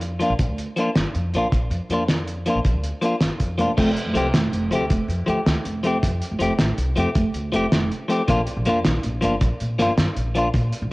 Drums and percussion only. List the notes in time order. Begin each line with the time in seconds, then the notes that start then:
0.01 closed hi-hat
0.21 closed hi-hat
0.39 kick, closed hi-hat
0.58 closed hi-hat
0.77 closed hi-hat
0.95 snare, closed hi-hat
1.15 closed hi-hat
1.34 closed hi-hat
1.52 kick, closed hi-hat
1.71 closed hi-hat
1.90 closed hi-hat
2.08 snare, closed hi-hat
2.27 closed hi-hat
2.46 closed hi-hat
2.65 kick, closed hi-hat
2.83 closed hi-hat
3.02 closed hi-hat
3.21 snare, closed hi-hat
3.40 kick, closed hi-hat
3.59 closed hi-hat
3.77 kick, crash
3.97 closed hi-hat
4.15 closed hi-hat
4.34 snare, closed hi-hat
4.53 closed hi-hat
4.72 closed hi-hat
4.90 kick, closed hi-hat
5.10 closed hi-hat
5.28 closed hi-hat
5.47 snare, closed hi-hat
5.65 closed hi-hat
5.84 closed hi-hat
6.03 kick, closed hi-hat
6.22 closed hi-hat
6.40 closed hi-hat
6.59 snare, closed hi-hat
6.78 closed hi-hat
6.96 closed hi-hat
7.15 kick, closed hi-hat
7.34 closed hi-hat
7.54 closed hi-hat
7.72 snare, closed hi-hat
7.91 closed hi-hat
8.10 closed hi-hat
8.28 kick, closed hi-hat
8.47 closed hi-hat
8.65 closed hi-hat
8.84 snare, closed hi-hat
9.03 closed hi-hat
9.22 closed hi-hat
9.41 kick, closed hi-hat
9.60 closed hi-hat
9.79 snare, closed hi-hat
9.98 snare, closed hi-hat
10.16 closed hi-hat
10.35 closed hi-hat
10.54 kick, closed hi-hat
10.72 closed hi-hat